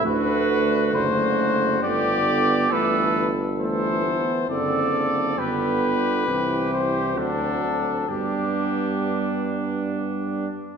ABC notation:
X:1
M:3/4
L:1/8
Q:1/4=67
K:G
V:1 name="Trumpet"
B2 c2 d2 | B z c2 d2 | B3 c A2 | G4 z2 |]
V:2 name="Trumpet"
F2 F2 G2 | A z A2 A2 | G2 G2 D2 | D4- D z |]
V:3 name="French horn"
A,2 A,2 B,2 | A, z A, B, C2 | B,2 C2 C2 | B,4- B, z |]
V:4 name="Trombone" clef=bass
D,2 D,2 D,2 | E, z E,2 D,2 | D,2 E,2 F,2 | G,4- G, z |]
V:5 name="Tuba" clef=bass
D,,2 F,,,2 G,,,2 | G,,,3 z F,,,2 | G,,,2 C,,2 D,,2 | G,,4- G,, z |]